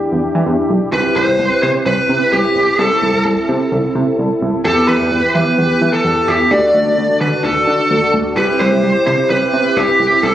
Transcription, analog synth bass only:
0.12 0.21 E2 medium
0.35 0.44 E3 loud
0.46 0.56 E2 loud
0.70 0.79 B1 medium
0.93 1.02 C2 loud
1.16 1.26 C2 loud
1.28 1.37 C2 medium
1.40 1.49 C2 loud
1.63 1.72 C3 medium
1.86 1.95 C2 loud
2.09 2.19 C3 loud
2.33 2.42 C2 loud
2.56 2.65 C2 medium
2.79 2.88 C2 loud
3.02 3.12 C2 loud
3.14 3.23 C2 medium
3.25 3.35 C2 medium
3.49 3.58 C3 medium
3.72 3.81 C2 loud
3.95 4.05 C3 medium
4.19 4.28 C2 loud
4.42 4.51 C2 medium
4.65 4.74 E2 loud
4.88 4.98 E2 loud
5.00 5.09 E2 medium
5.12 5.21 E2 medium
5.35 5.44 E3 loud
5.58 5.67 E2 loud
5.81 5.91 E3 medium
6.05 6.14 E2 loud
6.28 6.37 E2 medium
6.51 6.60 D2 loud
6.74 6.84 D2 loud
6.86 6.95 D2 medium
6.98 7.07 D2 loud
7.21 7.30 D3 medium
7.44 7.53 D2 loud
7.67 7.77 D3 loud
7.91 8.00 D2 loud
8.14 8.23 D2 loud
8.37 8.46 C2 loud
8.60 8.70 C2 loud
8.72 8.81 C2 medium
8.84 8.93 C2 loud
9.07 9.16 C3 medium
9.30 9.39 C2 loud
9.53 9.63 C3 loud
9.77 9.86 C2 loud
10.00 10.09 C2 medium
10.23 10.32 C2 loud

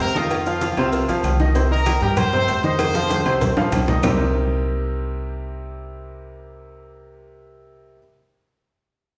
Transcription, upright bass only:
0.00 0.71 F2 loud
0.77 1.06 C2 loud
1.08 1.23 A#1 medium
1.23 1.96 C2 loud
2.01 2.45 G2 loud
2.47 3.20 F2 loud
3.25 3.54 C2 loud
3.56 3.71 A#1 medium
3.72 3.99 C2 loud
4.03 7.97 C2 loud

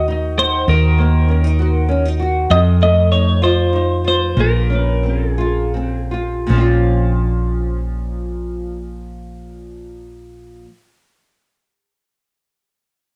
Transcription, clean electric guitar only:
0.39 0.67 C5 loud
0.69 1.86 A#4 loud
2.51 2.59 D#5 loud
2.83 3.11 D#5 loud
3.12 3.43 C#5 loud
3.44 4.07 C5 loud
4.08 4.40 C5 loud
4.40 5.30 A#4 medium
5.30 5.72 G#4 medium

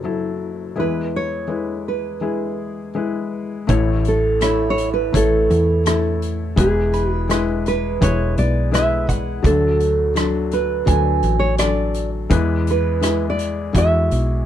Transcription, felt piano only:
0.00 0.73 F#1 soft
0.00 0.73 F#2 soft
0.00 0.04 F#3 medium
0.00 0.71 F#3 medium
0.00 0.05 E4 medium
0.00 0.05 A4 medium
0.05 0.71 E4 medium
0.05 0.71 A4 medium
0.76 3.65 E2 soft
0.76 3.65 E3 soft
0.76 1.43 G#3 medium
0.76 1.43 E4 soft
0.76 1.44 B4 medium
1.48 2.15 G#3 medium
1.48 2.16 E4 soft
1.48 2.16 B4 medium
2.21 2.89 G#3 medium
2.21 2.89 E4 soft
2.21 2.90 G#4 medium
2.95 3.63 G#3 medium
2.95 3.63 E4 medium
2.95 3.64 B4 medium
3.67 6.54 A1 medium
3.67 6.54 A2 medium
3.67 4.35 A3 medium
3.67 4.36 E4 medium
3.67 4.36 C#5 medium
4.41 5.08 A3 medium
4.41 5.09 E4 medium
4.41 5.09 C#5 medium
5.12 5.80 A3 medium
5.12 5.80 E4 medium
5.12 5.81 C#5 medium
5.85 6.52 A3 medium
5.85 6.52 E4 medium
5.85 6.53 A4 medium
6.56 9.40 E2 medium
6.56 9.40 E3 medium
6.56 7.23 G#3 medium
6.56 7.24 E4 medium
6.56 7.24 B4 medium
7.29 7.96 G#3 medium
7.29 7.97 E4 medium
7.29 7.97 B4 medium
8.01 8.67 G#3 medium
8.01 8.68 E4 medium
8.01 8.68 B4 medium
8.72 9.38 G#3 medium
8.72 9.39 E4 medium
8.72 9.39 B4 medium
9.43 12.27 D2 medium
9.43 12.27 D3 medium
9.43 10.09 F#3 medium
9.43 10.10 D4 medium
9.43 10.11 A4 medium
10.15 10.82 F#3 medium
10.15 10.82 D4 medium
10.15 10.82 A4 medium
10.86 11.53 F#3 medium
10.86 11.53 D4 medium
10.86 11.54 A4 medium
11.59 12.25 F#3 medium
11.59 12.26 D4 medium
11.59 12.27 A4 medium
12.30 14.46 E2 medium
12.30 14.46 E3 medium
12.30 12.97 G#3 medium
12.30 12.97 E4 medium
12.30 12.97 B4 medium
13.01 13.68 G#3 medium
13.01 13.69 E4 medium
13.01 13.69 G#4 medium
13.73 14.41 G#3 medium
13.73 14.41 E4 medium
13.73 14.42 F#4 medium

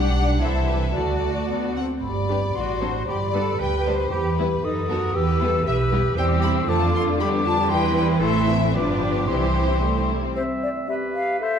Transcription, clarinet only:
2.03 2.57 G4 soft
2.55 3.07 F#4 soft
3.08 3.59 G4 soft
3.60 4.11 G4 soft
4.11 4.66 G4 soft
4.64 5.13 A4 soft
5.14 5.65 G4 soft
5.65 6.18 G4 soft
6.16 6.71 C5 soft
6.69 7.20 A4 soft
7.21 7.32 G4 soft
7.46 7.57 F4 soft
7.72 8.21 E4 soft
8.22 8.56 E4 soft
8.74 9.29 F4 soft
9.28 10.10 E4 soft
10.35 10.90 C4 soft
10.89 11.40 G4 soft
11.40 11.59 A4 soft

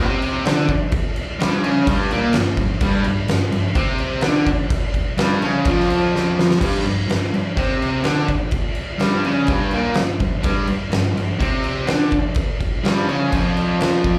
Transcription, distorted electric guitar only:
0.00 0.44 C3 medium
0.00 0.44 C4 medium
0.45 0.68 D3 medium
0.45 0.69 D4 medium
1.39 1.62 G2 loud
1.39 1.63 G3 loud
1.62 1.86 C#3 medium
1.62 1.86 C#4 medium
1.86 2.09 G2 medium
1.86 2.10 G3 loud
2.11 2.33 A#2 medium
2.11 2.34 A#3 loud
2.35 2.53 G2 medium
2.58 2.76 G2 medium
2.81 3.03 G2 loud
2.81 3.05 G3 loud
3.05 3.24 G2 medium
3.29 3.48 G2 medium
3.51 3.71 G2 medium
3.75 4.22 C3 loud
3.75 4.23 C4 loud
4.23 4.46 D3 medium
4.23 4.47 D4 medium
5.17 5.41 G2 medium
5.17 5.42 G3 loud
5.42 5.65 C#3 medium
5.42 5.66 C#4 loud
5.66 6.59 F2 medium
5.66 6.60 F3 medium
6.59 6.83 G2 loud
6.59 6.84 G3 loud
6.84 7.04 G2 medium
7.08 7.28 G2 medium
7.33 7.52 G2 medium
7.57 8.03 C3 medium
7.57 8.05 C4 loud
8.04 8.28 D3 medium
8.04 8.29 D4 loud
8.98 9.23 G2 medium
8.98 9.24 G3 loud
9.23 9.48 C#3 medium
9.23 9.48 C#4 medium
9.48 9.72 G2 medium
9.48 9.72 G3 loud
9.72 9.96 A#2 medium
9.72 9.97 A#3 medium
9.96 10.16 G2 medium
10.20 10.40 G2 medium
10.42 10.67 G2 medium
10.42 10.67 G3 loud
10.68 10.88 G2 medium
10.90 11.11 G2 medium
11.14 11.35 G2 medium
11.39 11.87 C3 medium
11.39 11.88 C4 loud
11.87 12.11 D3 medium
11.87 12.12 D4 loud
12.84 13.07 G2 medium
12.84 13.07 G3 loud
13.06 13.31 C#3 medium
13.06 13.31 C#4 medium
13.30 14.19 F2 medium
13.30 14.19 F3 loud

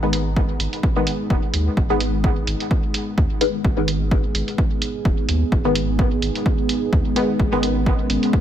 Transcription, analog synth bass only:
0.00 0.53 G#1 medium
0.60 0.68 G#1 medium
1.30 1.38 D#1 medium
1.54 1.69 D#2 loud
1.77 2.41 G#1 loud
2.47 2.55 G#1 medium
3.18 3.26 D#2 loud
3.65 4.28 G#1 loud
4.35 4.43 G#1 medium
5.05 5.13 D#1 medium
5.29 5.44 D#2 loud
5.52 6.16 G#1 loud
6.22 6.30 G#1 medium
6.93 7.01 D#2 medium
7.40 8.03 G#1 loud
8.10 8.18 G#1 medium

